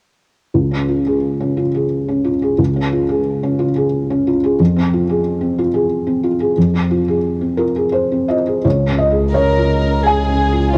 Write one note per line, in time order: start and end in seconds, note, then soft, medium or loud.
0.54 2.54 C#2 soft
0.71 0.99 C#4 soft
0.88 1.16 F4 soft
1.06 1.61 G#4 soft
1.40 1.68 C#4 soft
1.57 1.84 F4 soft
1.74 2.29 G#4 soft
2.08 2.35 C#4 soft
2.24 2.52 F4 soft
2.42 2.69 G#4 soft
2.58 4.55 C#2 soft
2.76 3.03 C#4 soft
2.92 3.19 F4 soft
3.09 3.63 G#4 soft
3.43 3.70 C#4 soft
3.59 3.86 F4 soft
3.76 4.29 G#4 soft
4.10 4.37 C#4 soft
4.27 4.53 F4 soft
4.44 4.60 G#4 soft
4.59 6.52 F2 soft
4.76 5.02 C4 soft
4.93 5.19 F4 soft
5.09 5.61 G#4 soft
5.41 5.67 C4 soft
5.58 5.84 F4 soft
5.74 6.26 G#4 soft
6.07 6.33 C4 soft
6.23 6.50 F4 soft
6.40 6.66 G#4 soft
6.57 8.61 F2 soft
6.74 7.00 C4 soft
6.91 7.17 F4 soft
7.08 7.62 G#4 soft
7.41 7.68 C4 soft
7.57 7.86 F4 soft
7.57 7.90 A#4 soft
7.76 8.32 G#4 soft
7.92 8.26 C5 soft
8.11 8.40 C4 soft
8.28 8.58 F4 soft
8.28 8.62 D#5 soft
8.47 8.64 G#4 soft
8.65 10.70 C#2 soft
8.65 10.78 C#2 soft
8.65 8.97 C#5 soft
8.88 9.25 C#4 soft
8.98 9.31 D#5 soft
9.11 9.48 G#4 soft
9.34 9.73 C#4 soft
9.34 10.02 A#4 soft
9.34 10.02 C#5 soft
9.58 9.96 F4 soft
9.82 10.20 C#4 soft
10.05 10.74 G#4 soft
10.05 10.43 G#4 soft
10.05 10.71 G#5 medium
10.29 10.65 C#4 soft
10.53 10.78 F4 soft
10.73 10.78 F4 soft
10.73 10.78 C#5 soft